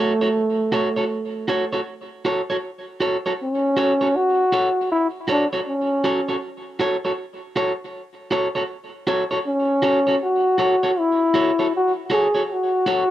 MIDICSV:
0, 0, Header, 1, 3, 480
1, 0, Start_track
1, 0, Key_signature, 3, "minor"
1, 0, Tempo, 759494
1, 1655, Time_signature, 4, 2, 24, 8
1, 8283, End_track
2, 0, Start_track
2, 0, Title_t, "Clean electric guitar"
2, 0, Program_c, 0, 27
2, 0, Note_on_c, 0, 66, 86
2, 0, Note_on_c, 0, 69, 97
2, 0, Note_on_c, 0, 73, 95
2, 76, Note_off_c, 0, 66, 0
2, 78, Note_off_c, 0, 69, 0
2, 80, Note_off_c, 0, 73, 0
2, 135, Note_on_c, 0, 73, 56
2, 137, Note_on_c, 0, 69, 53
2, 142, Note_on_c, 0, 66, 52
2, 175, Note_off_c, 0, 73, 0
2, 176, Note_off_c, 0, 69, 0
2, 178, Note_off_c, 0, 66, 0
2, 455, Note_on_c, 0, 66, 76
2, 460, Note_on_c, 0, 69, 85
2, 465, Note_on_c, 0, 73, 88
2, 555, Note_off_c, 0, 66, 0
2, 557, Note_off_c, 0, 69, 0
2, 560, Note_off_c, 0, 73, 0
2, 610, Note_on_c, 0, 73, 59
2, 615, Note_on_c, 0, 69, 57
2, 620, Note_on_c, 0, 66, 52
2, 652, Note_off_c, 0, 73, 0
2, 655, Note_off_c, 0, 69, 0
2, 657, Note_off_c, 0, 66, 0
2, 935, Note_on_c, 0, 66, 73
2, 939, Note_on_c, 0, 69, 78
2, 944, Note_on_c, 0, 73, 85
2, 1035, Note_off_c, 0, 66, 0
2, 1037, Note_off_c, 0, 69, 0
2, 1039, Note_off_c, 0, 73, 0
2, 1090, Note_on_c, 0, 73, 58
2, 1095, Note_on_c, 0, 69, 55
2, 1100, Note_on_c, 0, 66, 48
2, 1133, Note_off_c, 0, 73, 0
2, 1135, Note_off_c, 0, 69, 0
2, 1138, Note_off_c, 0, 66, 0
2, 1421, Note_on_c, 0, 66, 72
2, 1427, Note_on_c, 0, 69, 86
2, 1429, Note_on_c, 0, 73, 89
2, 1518, Note_off_c, 0, 66, 0
2, 1521, Note_off_c, 0, 69, 0
2, 1522, Note_off_c, 0, 73, 0
2, 1579, Note_on_c, 0, 73, 66
2, 1583, Note_on_c, 0, 69, 51
2, 1589, Note_on_c, 0, 66, 51
2, 1617, Note_off_c, 0, 73, 0
2, 1619, Note_off_c, 0, 69, 0
2, 1622, Note_off_c, 0, 66, 0
2, 1899, Note_on_c, 0, 66, 76
2, 1905, Note_on_c, 0, 69, 83
2, 1907, Note_on_c, 0, 73, 80
2, 1997, Note_off_c, 0, 66, 0
2, 2000, Note_off_c, 0, 69, 0
2, 2001, Note_off_c, 0, 73, 0
2, 2059, Note_on_c, 0, 73, 54
2, 2063, Note_on_c, 0, 69, 54
2, 2066, Note_on_c, 0, 66, 55
2, 2097, Note_off_c, 0, 73, 0
2, 2099, Note_off_c, 0, 69, 0
2, 2101, Note_off_c, 0, 66, 0
2, 2380, Note_on_c, 0, 66, 74
2, 2386, Note_on_c, 0, 69, 80
2, 2387, Note_on_c, 0, 73, 88
2, 2478, Note_off_c, 0, 66, 0
2, 2480, Note_off_c, 0, 69, 0
2, 2481, Note_off_c, 0, 73, 0
2, 2535, Note_on_c, 0, 73, 62
2, 2538, Note_on_c, 0, 69, 50
2, 2544, Note_on_c, 0, 66, 51
2, 2575, Note_off_c, 0, 73, 0
2, 2577, Note_off_c, 0, 69, 0
2, 2580, Note_off_c, 0, 66, 0
2, 2859, Note_on_c, 0, 66, 81
2, 2864, Note_on_c, 0, 69, 88
2, 2866, Note_on_c, 0, 73, 82
2, 2957, Note_off_c, 0, 66, 0
2, 2960, Note_off_c, 0, 69, 0
2, 2960, Note_off_c, 0, 73, 0
2, 3335, Note_on_c, 0, 66, 82
2, 3341, Note_on_c, 0, 69, 88
2, 3345, Note_on_c, 0, 73, 87
2, 3435, Note_off_c, 0, 66, 0
2, 3438, Note_off_c, 0, 69, 0
2, 3440, Note_off_c, 0, 73, 0
2, 3494, Note_on_c, 0, 73, 71
2, 3498, Note_on_c, 0, 69, 56
2, 3501, Note_on_c, 0, 66, 52
2, 3535, Note_off_c, 0, 73, 0
2, 3536, Note_off_c, 0, 69, 0
2, 3538, Note_off_c, 0, 66, 0
2, 3818, Note_on_c, 0, 66, 84
2, 3822, Note_on_c, 0, 69, 83
2, 3825, Note_on_c, 0, 73, 89
2, 3916, Note_off_c, 0, 66, 0
2, 3918, Note_off_c, 0, 69, 0
2, 3920, Note_off_c, 0, 73, 0
2, 3972, Note_on_c, 0, 73, 56
2, 3976, Note_on_c, 0, 69, 57
2, 3979, Note_on_c, 0, 66, 49
2, 4014, Note_off_c, 0, 73, 0
2, 4016, Note_off_c, 0, 69, 0
2, 4017, Note_off_c, 0, 66, 0
2, 4294, Note_on_c, 0, 66, 92
2, 4300, Note_on_c, 0, 69, 96
2, 4303, Note_on_c, 0, 73, 102
2, 4394, Note_off_c, 0, 66, 0
2, 4397, Note_off_c, 0, 69, 0
2, 4399, Note_off_c, 0, 73, 0
2, 4454, Note_on_c, 0, 73, 60
2, 4457, Note_on_c, 0, 69, 57
2, 4460, Note_on_c, 0, 66, 52
2, 4494, Note_off_c, 0, 73, 0
2, 4496, Note_off_c, 0, 69, 0
2, 4498, Note_off_c, 0, 66, 0
2, 4777, Note_on_c, 0, 66, 75
2, 4782, Note_on_c, 0, 69, 85
2, 4783, Note_on_c, 0, 73, 91
2, 4876, Note_off_c, 0, 66, 0
2, 4878, Note_off_c, 0, 69, 0
2, 4879, Note_off_c, 0, 73, 0
2, 5251, Note_on_c, 0, 66, 87
2, 5257, Note_on_c, 0, 69, 87
2, 5260, Note_on_c, 0, 73, 103
2, 5353, Note_off_c, 0, 66, 0
2, 5356, Note_off_c, 0, 69, 0
2, 5357, Note_off_c, 0, 73, 0
2, 5405, Note_on_c, 0, 73, 69
2, 5408, Note_on_c, 0, 69, 59
2, 5413, Note_on_c, 0, 66, 52
2, 5450, Note_off_c, 0, 73, 0
2, 5452, Note_off_c, 0, 69, 0
2, 5454, Note_off_c, 0, 66, 0
2, 5732, Note_on_c, 0, 66, 87
2, 5737, Note_on_c, 0, 69, 95
2, 5738, Note_on_c, 0, 73, 108
2, 5833, Note_off_c, 0, 66, 0
2, 5835, Note_off_c, 0, 69, 0
2, 5836, Note_off_c, 0, 73, 0
2, 5883, Note_on_c, 0, 73, 73
2, 5885, Note_on_c, 0, 69, 60
2, 5893, Note_on_c, 0, 66, 52
2, 5929, Note_off_c, 0, 73, 0
2, 5930, Note_off_c, 0, 69, 0
2, 5934, Note_off_c, 0, 66, 0
2, 6208, Note_on_c, 0, 66, 85
2, 6213, Note_on_c, 0, 69, 89
2, 6218, Note_on_c, 0, 73, 88
2, 6311, Note_off_c, 0, 66, 0
2, 6313, Note_off_c, 0, 69, 0
2, 6316, Note_off_c, 0, 73, 0
2, 6363, Note_on_c, 0, 73, 62
2, 6370, Note_on_c, 0, 69, 56
2, 6373, Note_on_c, 0, 66, 50
2, 6409, Note_off_c, 0, 73, 0
2, 6412, Note_off_c, 0, 69, 0
2, 6414, Note_off_c, 0, 66, 0
2, 6687, Note_on_c, 0, 66, 72
2, 6693, Note_on_c, 0, 69, 85
2, 6697, Note_on_c, 0, 73, 84
2, 6790, Note_off_c, 0, 66, 0
2, 6793, Note_off_c, 0, 69, 0
2, 6795, Note_off_c, 0, 73, 0
2, 6846, Note_on_c, 0, 73, 72
2, 6851, Note_on_c, 0, 69, 65
2, 6854, Note_on_c, 0, 66, 52
2, 6890, Note_off_c, 0, 73, 0
2, 6893, Note_off_c, 0, 69, 0
2, 6894, Note_off_c, 0, 66, 0
2, 7167, Note_on_c, 0, 66, 91
2, 7173, Note_on_c, 0, 69, 98
2, 7174, Note_on_c, 0, 73, 95
2, 7270, Note_off_c, 0, 66, 0
2, 7273, Note_off_c, 0, 69, 0
2, 7273, Note_off_c, 0, 73, 0
2, 7326, Note_on_c, 0, 73, 60
2, 7330, Note_on_c, 0, 69, 65
2, 7333, Note_on_c, 0, 66, 55
2, 7370, Note_off_c, 0, 73, 0
2, 7372, Note_off_c, 0, 69, 0
2, 7373, Note_off_c, 0, 66, 0
2, 7647, Note_on_c, 0, 66, 82
2, 7652, Note_on_c, 0, 69, 80
2, 7656, Note_on_c, 0, 73, 86
2, 7750, Note_off_c, 0, 66, 0
2, 7753, Note_off_c, 0, 69, 0
2, 7755, Note_off_c, 0, 73, 0
2, 7803, Note_on_c, 0, 73, 64
2, 7808, Note_on_c, 0, 69, 55
2, 7811, Note_on_c, 0, 66, 49
2, 7848, Note_off_c, 0, 73, 0
2, 7851, Note_off_c, 0, 69, 0
2, 7852, Note_off_c, 0, 66, 0
2, 8130, Note_on_c, 0, 66, 91
2, 8135, Note_on_c, 0, 69, 88
2, 8138, Note_on_c, 0, 73, 98
2, 8231, Note_off_c, 0, 66, 0
2, 8234, Note_off_c, 0, 69, 0
2, 8236, Note_off_c, 0, 73, 0
2, 8283, End_track
3, 0, Start_track
3, 0, Title_t, "Trombone"
3, 0, Program_c, 1, 57
3, 0, Note_on_c, 1, 57, 84
3, 1155, Note_off_c, 1, 57, 0
3, 2165, Note_on_c, 1, 61, 94
3, 2627, Note_on_c, 1, 66, 113
3, 2637, Note_off_c, 1, 61, 0
3, 3101, Note_off_c, 1, 66, 0
3, 3107, Note_on_c, 1, 64, 103
3, 3208, Note_off_c, 1, 64, 0
3, 3357, Note_on_c, 1, 62, 87
3, 3458, Note_off_c, 1, 62, 0
3, 3595, Note_on_c, 1, 61, 83
3, 4040, Note_off_c, 1, 61, 0
3, 5984, Note_on_c, 1, 61, 92
3, 6433, Note_off_c, 1, 61, 0
3, 6470, Note_on_c, 1, 66, 105
3, 6946, Note_on_c, 1, 64, 104
3, 6955, Note_off_c, 1, 66, 0
3, 7419, Note_off_c, 1, 64, 0
3, 7434, Note_on_c, 1, 66, 103
3, 7536, Note_off_c, 1, 66, 0
3, 7661, Note_on_c, 1, 68, 103
3, 7877, Note_off_c, 1, 68, 0
3, 7877, Note_on_c, 1, 68, 66
3, 7914, Note_on_c, 1, 66, 116
3, 7924, Note_off_c, 1, 68, 0
3, 8283, Note_off_c, 1, 66, 0
3, 8283, End_track
0, 0, End_of_file